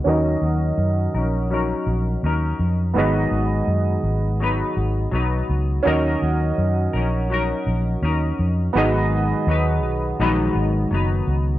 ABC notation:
X:1
M:4/4
L:1/8
Q:"Swing 16ths" 1/4=83
K:G#dor
V:1 name="Upright piano"
[CFAd]8 | [B,FGd]8 | [CFAd]8 | [B,FGd]8 |]
V:2 name="Clean electric guitar"
[D,F,CDA]3 [CDA] [F,CDA]2 [CDA]2 | [G,,D,F,B,DB]4 [F,B,DB]2 [F,B,DB]2 | [D,F,CDA]3 [CDA] [F,CDA]2 [CDA]2 | [G,,D,F,B,DB]2 [F,B,DB]2 [G,,D,F,B,DB]2 [F,B,DB]2 |]
V:3 name="Fingered electric bass" clef=bass
D,, D,, F,, A,,,2 A,,, D,, E,, | G,,, G,,, F,, G,,,2 G,,, B,,, C,, | D,, D,, F,, A,,,2 A,,, D,, E,, | G,,,2 D,, B,,, A,,, G,,, F,,, C,, |]